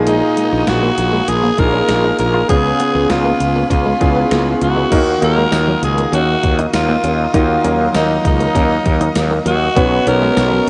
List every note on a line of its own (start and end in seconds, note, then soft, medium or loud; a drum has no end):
0.00 0.20 A#1 medium
0.00 0.63 A#2 medium
0.00 0.81 A#3 medium
0.00 0.81 D#4 medium
0.00 0.82 F4 medium
0.00 0.82 G#4 loud
0.00 2.46 A#4 medium
0.00 4.88 F5 medium
0.00 2.46 G#5 medium
0.00 2.45 D#6 medium
0.07 0.16 G#3 medium
0.07 0.70 D#4 medium
0.07 closed hi-hat medium
0.37 0.46 G#3 medium
0.37 closed hi-hat medium
0.52 0.63 A#1 medium
0.52 muted clean electric guitar stroke soft
0.67 0.89 A#1 loud
0.67 1.30 F#4 loud
0.67 snare loud
0.67 closed hi-hat medium
0.83 0.92 A#3 medium
0.98 1.20 A#1 medium
0.98 muted clean electric guitar stroke soft
0.98 closed hi-hat medium
1.13 1.22 G#3 medium
1.28 1.50 A#1 loud
1.28 1.61 G#4 loud
1.28 closed hi-hat medium
1.44 1.52 A#3 medium
1.58 1.80 A#1 loud
1.58 2.37 A#3 medium
1.58 2.37 D#4 medium
1.58 2.37 F4 medium
1.58 2.37 G#4 medium
1.58 2.19 A#4 loud
1.58 muted clean electric guitar stroke soft
1.58 kick medium
1.58 closed hi-hat medium
1.73 1.82 C#4 medium
1.89 2.11 A#1 loud
1.89 snare loud
1.89 closed hi-hat medium
2.04 2.13 D#4 medium
2.19 2.41 A#1 loud
2.19 2.47 A#4 medium
2.19 muted clean electric guitar stroke soft
2.19 closed hi-hat medium
2.34 2.43 F4 medium
2.48 2.71 C#2 loud
2.48 3.36 C#3 medium
2.48 3.54 B3 medium
2.48 3.54 C#4 medium
2.48 2.58 C#4 medium
2.48 3.54 F4 medium
2.48 3.12 G#4 loud
2.48 3.54 G#4 medium
2.48 4.89 B4 medium
2.48 4.89 G#5 medium
2.48 4.89 C#6 medium
2.48 kick loud
2.48 closed hi-hat loud
2.80 2.89 B3 medium
2.80 closed hi-hat medium
2.95 3.06 C#2 medium
2.95 muted clean electric guitar stroke soft
3.10 3.32 C#2 loud
3.10 3.70 F4 loud
3.10 snare loud
3.10 closed hi-hat medium
3.25 3.34 A#3 medium
3.40 3.62 C#2 medium
3.40 muted clean electric guitar stroke soft
3.40 closed hi-hat medium
3.56 3.65 A#3 medium
3.70 3.92 C#2 loud
3.70 4.58 F4 medium
3.70 kick medium
3.70 closed hi-hat medium
3.86 3.95 G#3 medium
4.00 4.23 C#2 medium
4.00 4.79 B3 medium
4.00 4.79 C#4 medium
4.00 4.07 E4 medium
4.00 4.80 G#4 medium
4.00 muted clean electric guitar stroke soft
4.00 kick medium
4.00 closed hi-hat medium
4.07 4.83 F4 medium
4.16 4.25 B3 medium
4.31 4.53 C#2 medium
4.31 4.40 A#3 medium
4.31 snare loud
4.31 closed hi-hat medium
4.61 4.83 C#2 medium
4.61 5.19 F#4 medium
4.61 muted clean electric guitar stroke soft
4.61 closed hi-hat medium
4.77 4.85 G#3 medium
4.91 5.14 D#2 loud
4.91 5.79 D#3 medium
4.91 5.18 A#3 medium
4.91 5.18 D#4 medium
4.91 5.01 D#4 medium
4.91 5.18 F4 medium
4.91 5.18 F#4 medium
4.91 9.73 A#4 medium
4.91 5.18 A#4 medium
4.91 10.70 D#5 medium
4.91 9.73 F5 medium
4.91 9.72 D#6 medium
4.91 kick loud
4.91 closed hi-hat loud
4.91 crash loud
5.21 5.44 D#2 medium
5.21 6.26 A#3 medium
5.21 6.27 D#4 medium
5.21 6.27 F4 medium
5.21 6.27 F#4 medium
5.21 6.27 A#4 medium
5.21 5.80 A#4 loud
5.21 muted clean electric guitar stroke soft
5.21 closed hi-hat medium
5.37 5.46 G#3 medium
5.52 5.74 D#2 loud
5.52 snare loud
5.52 closed hi-hat medium
5.52 tambourine medium
5.68 5.76 F#3 medium
5.82 6.04 C#2 medium
5.82 6.12 G#4 medium
5.82 muted clean electric guitar stroke soft
5.82 closed hi-hat medium
5.98 6.07 A#3 medium
5.98 closed hi-hat medium
6.13 6.34 D#2 loud
6.13 6.22 C#4 medium
6.13 6.58 F#4 loud
6.13 closed hi-hat medium
6.43 6.65 D#2 loud
6.43 muted clean electric guitar stroke soft
6.43 kick medium
6.43 closed hi-hat medium
6.59 6.68 D#4 medium
6.59 closed hi-hat medium
6.73 6.95 D#2 medium
6.73 7.31 F4 medium
6.73 muted clean electric guitar stroke soft
6.73 snare loud
6.73 closed hi-hat medium
6.73 tambourine medium
6.89 6.98 A#3 medium
7.04 7.25 D#2 loud
7.04 7.13 C#4 medium
7.04 closed hi-hat medium
7.33 7.56 D#2 loud
7.33 8.21 D#3 medium
7.33 7.60 A#3 medium
7.33 7.60 D#4 medium
7.33 7.43 D#4 medium
7.33 7.60 F4 medium
7.33 7.91 F4 medium
7.33 7.60 F#4 medium
7.33 7.61 A#4 medium
7.33 kick loud
7.33 closed hi-hat loud
7.49 muted clean electric guitar stroke soft
7.64 7.86 D#2 medium
7.64 8.69 F#3 medium
7.64 8.69 A#3 medium
7.64 7.73 C#4 medium
7.64 8.69 D#4 medium
7.64 8.69 F4 medium
7.64 8.70 A#4 medium
7.64 closed hi-hat medium
7.95 8.17 D#2 loud
7.95 8.23 D#4 medium
7.95 muted clean electric guitar stroke soft
7.95 snare loud
7.95 closed hi-hat medium
7.95 tambourine medium
8.25 8.47 C#2 medium
8.25 8.34 D#4 medium
8.25 9.16 D#4 loud
8.25 kick loud
8.25 closed hi-hat medium
8.40 8.49 A#3 medium
8.40 closed hi-hat medium
8.55 8.77 D#2 loud
8.55 8.64 C#4 medium
8.55 kick loud
8.55 closed hi-hat loud
8.71 muted clean electric guitar stroke soft
8.86 9.08 D#2 loud
8.86 kick medium
8.86 closed hi-hat medium
9.01 9.10 D#4 medium
9.01 closed hi-hat medium
9.16 9.38 D#2 loud
9.16 muted clean electric guitar stroke soft
9.16 snare loud
9.16 closed hi-hat medium
9.16 tambourine medium
9.31 9.40 A#3 medium
9.46 9.68 D#2 loud
9.46 9.55 F#3 medium
9.46 10.09 F#4 loud
9.46 closed hi-hat medium
9.76 9.98 B1 loud
9.76 10.64 B2 medium
9.76 10.03 B3 medium
9.76 9.85 B3 medium
9.76 10.70 B3 medium
9.76 10.03 C#4 medium
9.76 10.03 F#4 medium
9.76 10.03 B4 medium
9.76 10.70 C#5 medium
9.76 10.03 C#5 medium
9.76 10.70 C#6 medium
9.76 kick loud
9.76 closed hi-hat loud
10.06 10.29 B1 loud
10.06 10.70 B3 medium
10.06 10.70 C#4 medium
10.06 10.70 F#4 medium
10.06 10.68 A#4 loud
10.06 10.70 C#5 medium
10.06 muted clean electric guitar stroke soft
10.06 closed hi-hat medium
10.22 10.31 G#3 medium
10.37 10.59 B1 loud
10.37 snare loud
10.37 closed hi-hat medium
10.37 tambourine medium
10.52 10.61 F#3 medium